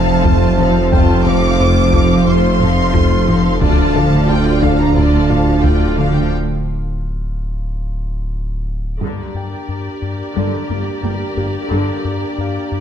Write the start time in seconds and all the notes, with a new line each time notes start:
Already playing: F1 F2 F3 C4 A4 F5 A5
0.24 F2 F3 A3 F4 C5, taiko
0.58 F3 C4 A4 F5, taiko low-mid
0.91 F2 F3 A3 F4 C5 G5 A5, taiko
1.25 F3 C4 A4 F5 D6, taiko low-mid
1.60 F2 A3 F4 C5
1.93 F2 F3 C4 A4 F5, taiko
2.26 F2 A3 F4 C5 C6, taiko low-mid
2.60 F2 F3 C4 A4 F5, taiko low-mid
2.94 F2 F3 A3 F4 C5, taiko
3.27 F3 C4 A4 F5, taiko low-mid
3.61 D1 D2 D3 F3 D4 F4 D5 A5, taiko
3.95 D3 F3 A3 D4 A4 F5, taiko low-mid
4.29 D2 D3 D4 F4 D5 G5
4.62 D2 D3 F3 D4 A4 F5, taiko
4.79 A#5
4.97 D2 D3 F4 D5 A5, taiko low-mid
5.30 D2 F3 D4 F4 A4 F5, taiko low-mid
5.64 D2 D3 F4 D5 G5, taiko
5.98 D3 F3 A3 D4 A4 F5, taiko low-mid
6.15 G5
9.01 G1 G2 D3 G3 A#3 D4 G4 A#4 D5, taiko
9.34 G2 G5
9.69 G2
10.02 G2
10.36 G1 G2 D3 G3 D5
10.69 G1 G2 A#3
11.03 G1 G2 G3 A#3
11.37 G1 G2 A#3 G4
11.70 G1 G2 D3 G3
12.05 G2
12.38 G2 F5
12.72 G2